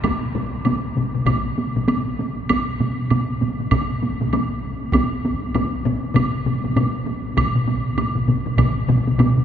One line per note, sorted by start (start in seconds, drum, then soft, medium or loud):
0.04 taiko loud
0.04 taiko high medium
0.04 high woodblock soft
0.23 taiko high soft
0.35 taiko low-mid medium
0.35 taiko high medium
0.54 taiko high soft
0.65 taiko low-mid medium
0.65 taiko high medium
0.65 high woodblock soft
0.85 taiko high soft
0.97 taiko low-mid medium
0.97 taiko high soft
1.14 taiko low-mid medium
1.14 taiko high soft
1.26 taiko medium
1.26 taiko low-mid medium
1.26 taiko high medium
1.26 high woodblock medium
1.46 taiko high soft
1.58 taiko high medium
1.76 taiko low-mid medium
1.76 taiko high soft
1.88 taiko high medium
1.88 high woodblock soft
2.07 taiko high soft
2.19 taiko high medium
2.38 taiko high soft
2.49 taiko medium
2.49 taiko high medium
2.49 high woodblock medium
2.68 taiko high soft
2.80 taiko mid medium
2.80 taiko high medium
2.99 taiko high soft
3.10 taiko mid medium
3.10 taiko high medium
3.10 high woodblock soft
3.29 taiko high soft
3.41 taiko mid medium
3.41 taiko high medium
3.60 taiko mid medium
3.60 taiko high soft
3.71 taiko medium
3.71 taiko mid loud
3.71 taiko high medium
3.71 high woodblock medium
3.90 taiko high soft
4.03 taiko high medium
4.21 taiko mid medium
4.21 taiko high medium
4.33 taiko high medium
4.33 high woodblock soft
4.82 taiko high soft
4.93 taiko medium
4.93 taiko high medium
4.93 high woodblock soft
5.13 taiko high soft
5.25 taiko high medium
5.43 taiko high soft
5.55 taiko low-mid medium
5.55 taiko high medium
5.55 high woodblock soft
5.74 taiko high soft
5.85 taiko low-mid loud
5.85 taiko high medium
6.04 taiko high soft
6.15 taiko medium
6.15 taiko low-mid loud
6.15 taiko high medium
6.15 high woodblock medium
6.35 taiko high soft
6.46 taiko low-mid medium
6.46 taiko high medium
6.64 taiko low-mid medium
6.64 taiko high soft
6.76 taiko low-mid loud
6.76 taiko high medium
6.76 high woodblock soft
6.95 taiko high soft
7.07 taiko high medium
7.37 taiko medium
7.37 taiko low-mid medium
7.37 taiko mid medium
7.37 taiko high medium
7.37 high woodblock medium
7.55 taiko low-mid medium
7.55 taiko mid medium
7.55 taiko high soft
7.67 taiko low-mid medium
7.67 taiko mid medium
7.67 taiko high medium
7.86 taiko high soft
7.97 taiko low-mid medium
7.97 taiko mid medium
7.97 taiko high medium
7.97 high woodblock soft
8.15 taiko low-mid medium
8.15 taiko mid medium
8.15 taiko high soft
8.28 taiko low-mid medium
8.28 taiko mid medium
8.28 taiko high soft
8.46 taiko low-mid medium
8.46 taiko mid medium
8.46 taiko high soft
8.58 taiko medium
8.58 taiko low-mid loud
8.58 taiko mid loud
8.58 taiko high medium
8.58 high woodblock medium
8.77 taiko high soft
8.88 taiko low-mid medium
8.88 taiko mid medium
8.88 taiko high medium
9.08 taiko high soft
9.18 taiko low-mid medium
9.18 taiko mid medium
9.18 taiko high medium
9.18 high woodblock soft
9.37 taiko low-mid medium
9.37 taiko mid medium
9.37 taiko high soft